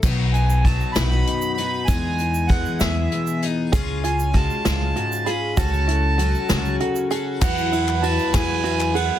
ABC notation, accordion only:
X:1
M:6/8
L:1/8
Q:3/8=65
K:E
V:1 name="Accordion"
z g a b2 b | g2 f e2 z | z g a3 b | a4 z2 |
f2 a g2 f |]